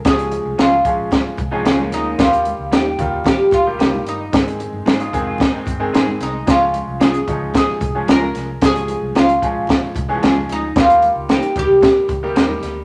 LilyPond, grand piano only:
\new Staff \with { instrumentName = "Grand piano" } { \time 4/4 \key des \lydian \tempo 4 = 112 <f aes des' g' aes'>4~ <f aes des' g' aes'>16 r16 <f aes des' aes'>4 r16 <f aes des' aes'>4 r16 | <ees g bes ges' g'>4~ <ees g bes ges' g'>16 r16 <ees g bes f'>4 r16 <ees g bes g'>4 r16 | <ees aes c' aes'>4~ <ees aes c' aes'>16 r16 <ees aes c' aes'>4 r16 <ees aes c' aes'>4 r16 | <f aes des' aes'>4~ <f aes des' aes'>16 r16 <f aes des' ees'>4 r16 <f aes des' aes'>4 r16 |
<f aes des' aes'>4~ <f aes des' aes'>16 r16 <f aes des' aes'>4 r16 <fes f aes des' aes'>4 r16 | <ees g bes ges' g'>4~ <ees g bes ges' g'>16 r16 <ees g bes g'>4 r16 <ees g bes g'>4 r16 | }